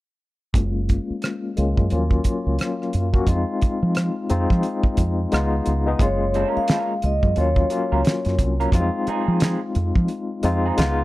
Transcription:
0.54 0.98 F#1 medium
0.54 1.52 G#3 medium
0.54 1.52 A#3 medium
0.54 1.52 C#4 medium
0.54 1.53 F4 medium
0.54 kick medium
0.54 closed hi-hat medium
0.89 kick medium
0.89 closed hi-hat soft
1.10 muted fingered electric bass stroke soft
1.22 cross-stick medium
1.22 closed hi-hat medium
1.57 1.74 C#2 medium
1.57 1.91 G#3 medium
1.57 1.90 A#3 medium
1.57 1.91 C#4 medium
1.57 1.91 F4 medium
1.57 closed hi-hat medium
1.77 1.88 F#2 medium
1.77 kick medium
1.90 2.18 D#2 medium
1.90 1.99 F3 medium
1.90 3.05 A#3 medium
1.90 3.05 C#4 medium
1.90 3.06 F4 medium
1.90 closed hi-hat medium
1.97 3.08 F#3 medium
2.11 kick medium
2.24 kick medium
2.24 closed hi-hat medium
2.46 2.57 C#2 medium
2.59 cross-stick medium
2.59 closed hi-hat medium
2.82 cross-stick soft
2.93 3.21 F#2 medium
2.93 closed hi-hat medium
3.13 3.26 F#3 medium
3.13 3.26 A#3 medium
3.13 3.27 C#4 medium
3.13 3.27 F#4 medium
3.13 kick medium
3.27 3.43 F2 medium
3.27 4.25 G#3 medium
3.27 4.25 C4 medium
3.27 4.25 D#4 medium
3.27 4.25 F4 medium
3.27 kick medium
3.27 closed hi-hat medium
3.61 muted fingered electric bass stroke soft
3.61 kick medium
3.61 closed hi-hat soft
3.83 4.09 F3 medium
3.95 cross-stick medium
3.95 closed hi-hat medium
4.29 4.46 F2 medium
4.29 5.31 G#3 medium
4.29 5.32 C4 medium
4.29 5.32 D#4 medium
4.29 5.32 F4 medium
4.29 closed hi-hat medium
4.50 4.61 F3 medium
4.50 kick medium
4.50 cross-stick soft
4.63 closed hi-hat medium
4.84 kick medium
4.97 5.25 F2 medium
4.97 kick medium
4.97 closed hi-hat medium
5.32 5.59 C#2 medium
5.32 5.83 G#3 medium
5.32 5.83 B3 medium
5.32 5.83 D#4 medium
5.32 5.83 F4 medium
5.32 cross-stick medium
5.32 closed hi-hat medium
5.66 5.93 C#2 medium
5.66 closed hi-hat medium
5.86 5.99 G#3 medium
5.86 5.99 B3 medium
5.86 6.00 D#4 medium
5.86 6.00 G#4 medium
5.99 6.43 F#1 medium
5.99 7.30 G#3 medium
5.99 7.30 A#3 medium
5.99 7.30 C#4 medium
5.99 7.31 F4 medium
5.99 6.57 C#5 medium
5.99 kick loud
5.99 closed hi-hat medium
6.34 6.48 G3 medium
6.34 6.48 C4 medium
6.34 6.49 E4 medium
6.34 6.49 A4 medium
6.34 closed hi-hat soft
6.48 6.66 G#3 medium
6.48 6.67 C#4 medium
6.48 6.67 F4 medium
6.48 6.67 A#4 medium
6.57 7.05 F5 medium
6.57 muted fingered electric bass stroke soft
6.68 6.92 G#3 medium
6.68 6.92 C#4 medium
6.68 6.92 F4 medium
6.68 6.92 A#4 medium
6.68 snare loud
6.68 closed hi-hat medium
7.02 7.19 C#2 medium
7.02 7.39 D#5 medium
7.02 closed hi-hat medium
7.23 7.34 F#2 medium
7.23 kick medium
7.36 7.64 D#2 medium
7.36 7.69 F#3 medium
7.36 7.69 A#3 medium
7.36 7.69 C#4 medium
7.36 7.70 F4 medium
7.36 closed hi-hat medium
7.40 8.36 C#5 medium
7.56 kick medium
7.70 8.68 F#3 medium
7.70 8.68 A#3 medium
7.70 8.68 C#4 medium
7.70 8.69 F4 medium
7.70 closed hi-hat medium
7.92 8.02 C#2 medium
7.92 8.01 F#3 soft
7.92 8.01 C#4 soft
7.92 8.00 F4 medium
7.92 8.00 A#4 medium
8.05 snare loud
8.05 closed hi-hat medium
8.25 8.36 F#2 medium
8.25 snare soft
8.25 closed hi-hat soft
8.39 8.66 C2 medium
8.39 kick medium
8.39 closed hi-hat medium
8.60 8.69 F#3 soft
8.60 8.69 C#4 soft
8.60 8.69 F4 medium
8.60 8.68 A#4 medium
8.60 closed hi-hat soft
8.72 8.89 F2 medium
8.72 8.81 F#3 medium
8.72 10.03 C4 medium
8.72 10.03 D#4 medium
8.72 10.03 F4 medium
8.72 kick loud
8.72 closed hi-hat medium
8.80 10.06 G#3 medium
9.07 9.39 G#3 medium
9.07 9.39 C4 medium
9.07 9.40 D#4 medium
9.07 9.40 G#4 medium
9.07 muted fingered electric bass stroke soft
9.07 closed hi-hat soft
9.28 9.55 F3 medium
9.40 9.59 G#3 medium
9.40 9.59 C4 medium
9.40 9.59 D#4 medium
9.40 9.59 G#4 medium
9.40 snare loud
9.40 closed hi-hat medium
9.75 9.92 F2 medium
9.75 closed hi-hat medium
9.96 10.07 F3 medium
9.96 kick medium
10.08 closed hi-hat medium
10.43 10.70 F2 medium
10.43 10.76 G#3 medium
10.43 10.77 C4 medium
10.43 10.77 D#4 medium
10.43 10.78 F4 medium
10.43 closed hi-hat medium
10.66 10.74 G#3 soft
10.66 10.74 C4 soft
10.66 10.74 D#4 medium
10.66 10.74 G#4 medium
10.77 11.04 C#2 medium
10.77 11.04 G#3 medium
10.77 11.04 B3 medium
10.77 11.04 D#4 medium
10.77 11.04 F4 loud
10.77 snare loud
10.77 closed hi-hat medium

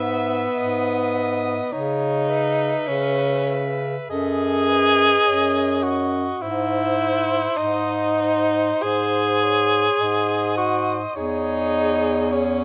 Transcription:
0.00 0.45 G#2 medium
0.00 1.71 B3 medium
0.00 0.59 E5 medium
0.00 1.12 E5 medium
0.57 1.58 G#2 medium
0.57 1.73 D#5 medium
1.14 1.70 E5 soft
1.72 2.74 C#3 medium
1.72 2.89 D#4 medium
1.72 2.30 C#5 medium
2.29 4.10 B4 medium
2.29 3.47 E5 medium
2.88 3.96 C#3 medium
2.88 3.81 C#4 medium
3.49 4.09 E5 soft
4.10 5.12 F#2 medium
4.10 5.84 G#4 loud
4.10 4.70 A4 medium
4.10 4.67 D#5 medium
4.68 5.28 B4 medium
4.68 5.82 D#5 medium
5.26 6.28 F#2 medium
5.26 6.15 C#5 medium
5.83 6.43 F#4 medium
5.83 6.40 D#5 medium
6.41 7.43 G#2 medium
6.41 7.59 E4 medium
6.41 7.58 C5 medium
6.99 8.18 C5 medium
7.57 8.69 G#2 medium
7.57 8.84 D#4 loud
7.57 8.20 D#5 medium
8.19 9.40 C5 medium
8.19 8.83 C5 medium
8.82 9.86 G#2 medium
8.82 10.57 G#4 loud
8.82 9.45 C5 medium
9.42 10.56 C5 medium
9.42 10.02 C#5 medium
10.00 11.03 G#2 medium
10.00 11.16 D#5 medium
10.57 10.95 F#4 medium
10.57 11.15 C5 soft
11.15 12.64 E2 medium
11.15 12.34 D#4 loud
11.15 12.64 G#4 medium
11.15 12.28 C#5 medium
12.32 12.64 C#4 medium
12.32 12.64 C#5 medium

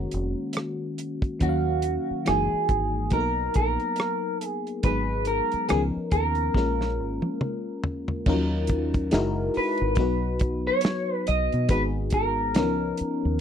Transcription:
0.00 1.03 D#3 medium
0.00 1.03 G#3 medium
0.00 1.04 A#3 medium
0.00 1.04 C#4 medium
0.00 1.04 F#4 medium
0.00 0.94 A#4 medium
0.11 0.33 F1 medium
0.11 closed hi-hat medium
0.53 cross-stick medium
0.53 closed hi-hat medium
0.98 closed hi-hat medium
1.22 kick medium
1.22 closed hi-hat soft
1.39 1.97 D#2 medium
1.39 2.26 D#3 medium
1.39 2.26 F#3 medium
1.39 2.26 A#3 medium
1.39 2.27 C#4 medium
1.39 1.49 D#4 soft
1.39 2.30 F#4 medium
1.39 kick medium
1.39 closed hi-hat medium
1.49 2.31 F5 medium
1.82 closed hi-hat medium
2.11 muted fingered electric bass stroke soft
2.25 2.48 F#1 medium
2.25 2.97 E3 medium
2.25 2.98 G#3 medium
2.25 2.98 A#3 medium
2.25 2.98 D#4 medium
2.25 2.99 F#4 medium
2.25 3.13 G#4 medium
2.25 cross-stick medium
2.25 closed hi-hat medium
2.69 3.13 G#1 medium
2.69 kick medium
2.69 closed hi-hat medium
3.10 3.48 B1 medium
3.10 4.45 F#3 medium
3.10 4.45 A#3 medium
3.10 4.46 B3 medium
3.10 4.46 D#4 medium
3.10 3.20 A4 medium
3.10 3.55 A#4 loud
3.10 kick medium
3.10 closed hi-hat medium
3.20 4.50 A#4 medium
3.54 3.76 A#1 medium
3.54 4.46 A#4 medium
3.54 kick medium
3.54 closed hi-hat medium
3.80 closed hi-hat soft
3.96 cross-stick medium
3.96 closed hi-hat medium
4.41 closed hi-hat medium
4.46 4.84 G#4 medium
4.67 closed hi-hat soft
4.83 5.40 G#1 medium
4.83 5.69 F#3 medium
4.83 5.69 G#3 medium
4.83 5.68 B3 medium
4.83 5.70 D#4 medium
4.83 5.71 G#4 medium
4.83 5.27 B4 loud
4.83 kick medium
4.83 closed hi-hat medium
5.25 5.69 A#4 medium
5.25 closed hi-hat medium
5.52 muted fingered electric bass stroke soft
5.52 closed hi-hat soft
5.69 5.91 C#2 medium
5.69 5.76 D#3 medium
5.69 6.40 B3 medium
5.69 6.41 C#4 medium
5.69 6.41 D#4 medium
5.69 5.81 G#4 medium
5.69 6.42 A#4 medium
5.69 cross-stick loud
5.69 closed hi-hat medium
5.75 6.43 F3 medium
5.97 muted fingered electric bass stroke soft
6.11 6.48 D#2 medium
6.11 7.80 A#4 medium
6.11 kick medium
6.11 closed hi-hat medium
6.35 closed hi-hat soft
6.54 7.00 A#1 medium
6.54 7.89 G#3 medium
6.54 7.89 A#3 medium
6.54 7.90 C#4 medium
6.54 7.90 F4 medium
6.54 7.90 A#4 medium
6.54 kick medium
6.54 snare soft
6.81 snare soft
7.00 7.19 G#1 medium
7.22 high tom soft
7.41 mid tom medium
7.84 floor tom medium
8.08 floor tom medium
8.26 9.15 D#2 loud
8.26 8.34 F3 medium
8.26 9.12 C#4 medium
8.26 9.11 D#4 medium
8.26 9.13 F4 medium
8.26 9.13 A#4 medium
8.26 kick medium
8.26 crash medium
8.33 9.15 F#3 medium
8.67 kick loud
8.67 closed hi-hat medium
8.94 kick medium
8.94 closed hi-hat soft
9.11 9.48 F#1 medium
9.11 9.83 G#3 medium
9.11 9.83 D#4 medium
9.11 9.84 E4 medium
9.11 9.84 F#4 medium
9.11 9.84 A#4 medium
9.11 snare loud
9.11 closed hi-hat medium
9.54 10.67 B4 medium
9.54 muted fingered electric bass stroke soft
9.54 open hi-hat soft
9.78 9.98 G#1 medium
9.78 closed hi-hat soft
9.95 10.69 B1 medium
9.95 11.31 F#3 medium
9.95 11.32 B3 medium
9.95 11.32 D#4 medium
9.95 kick loud
9.95 closed hi-hat medium
10.00 11.33 F#4 medium
10.00 11.33 B4 medium
10.39 kick medium
10.39 closed hi-hat medium
10.67 11.14 C#5 medium
10.81 snare loud
10.81 closed hi-hat medium
11.14 11.27 B4 medium
11.27 11.48 B1 medium
11.27 11.70 D#5 loud
11.27 closed hi-hat medium
11.52 11.68 B2 medium
11.52 closed hi-hat soft
11.68 12.58 G#1 loud
11.68 12.55 G#3 medium
11.68 12.54 B3 medium
11.68 12.55 D#4 medium
11.68 12.56 F#4 medium
11.68 12.56 G#4 medium
11.68 11.82 B4 loud
11.68 kick loud
11.68 closed hi-hat medium
12.10 13.41 A#4 medium
12.10 kick loud
12.10 closed hi-hat medium
12.55 12.92 C#2 loud
12.55 12.63 D#3 medium
12.55 13.26 B3 medium
12.55 13.27 C#4 medium
12.55 13.27 D#4 medium
12.55 13.28 A#4 medium
12.55 snare loud
12.55 closed hi-hat medium
12.61 13.29 F3 medium
12.97 muted fingered electric bass stroke soft
12.97 closed hi-hat medium
13.25 13.39 D#2 medium

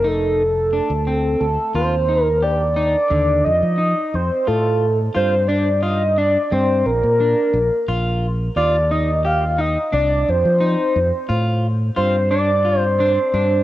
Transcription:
0.04 0.80 F1 medium
0.04 0.42 D#4 medium
0.04 1.40 A4 medium
0.73 0.92 D4 medium
0.90 1.35 D2 medium
1.07 1.45 C4 medium
1.40 1.56 D2 medium
1.40 1.73 A4 medium
1.74 2.95 D#2 medium
1.74 1.94 F4 medium
1.74 2.24 C5 loud
2.09 2.28 D#4 medium
2.24 2.45 A#4 loud
2.43 2.62 G4 medium
2.43 2.76 D5 loud
2.76 2.96 D#4 medium
2.76 3.46 D5 loud
3.10 3.41 D#2 medium
3.10 3.48 D3 medium
3.44 3.61 F2 medium
3.44 4.17 D#5 loud
3.63 3.93 F3 medium
3.78 4.16 D#4 medium
4.14 4.29 F2 medium
4.14 4.49 C5 medium
4.47 5.08 A2 medium
4.47 4.85 F4 medium
4.47 4.99 A4 loud
5.14 6.36 G2 medium
5.14 5.34 F4 medium
5.14 5.49 C5 loud
5.48 5.68 D4 medium
5.48 5.83 D5 medium
5.82 6.02 F4 medium
5.82 6.19 D#5 medium
6.17 6.37 D4 medium
6.17 6.55 D5 loud
6.52 6.82 G2 medium
6.52 6.90 C4 medium
6.52 6.87 C5 medium
6.86 7.01 A#1 medium
6.86 8.23 A#4 loud
7.03 7.33 A#2 medium
7.20 7.58 D4 medium
7.53 7.69 A#1 medium
7.88 8.48 A#1 medium
7.88 8.26 F4 medium
8.56 9.76 D#2 medium
8.56 8.76 F4 medium
8.56 8.93 D5 loud
8.91 9.10 D#4 medium
8.91 9.28 D#5 medium
9.25 9.44 G4 medium
9.25 9.62 F5 loud
9.58 9.77 D#4 medium
9.58 9.93 D#5 loud
9.92 10.23 C2 medium
9.92 10.30 D4 medium
9.92 10.31 D5 loud
10.29 10.43 F2 medium
10.29 11.65 C5 loud
10.45 10.75 F3 medium
10.61 10.98 D#4 medium
10.96 11.10 F2 medium
11.29 11.89 A2 loud
11.29 11.66 F4 medium
11.96 13.17 G2 medium
11.96 12.15 F4 medium
11.96 12.29 C5 loud
12.31 12.50 D4 medium
12.31 12.80 D5 loud
12.65 12.84 F4 medium
12.80 12.99 C5 loud
12.99 13.19 D4 medium
12.99 13.63 C5 loud
13.34 13.63 G2 medium
13.34 13.63 D4 medium

